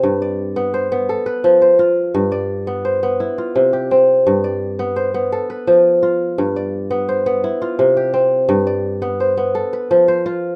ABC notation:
X:1
M:12/8
L:1/8
Q:3/8=113
K:Gmix
V:1 name="Kora"
z d3 c2 A B2 c3 | z d3 c2 E F2 G3 | z d3 c2 A B3 z2 | z d3 c2 E F2 G3 |
z d3 c2 A B2 c3 |]
V:2 name="Kora"
G,,2 z B,2 B, z2 F,2 F2 | G,,2 z B,2 B, z2 C,2 C2 | G,,2 z B,2 B, z2 F,2 F2 | G,,2 z B,2 B, z2 C,2 C2 |
G,,2 z B,2 B, z2 F,2 F2 |]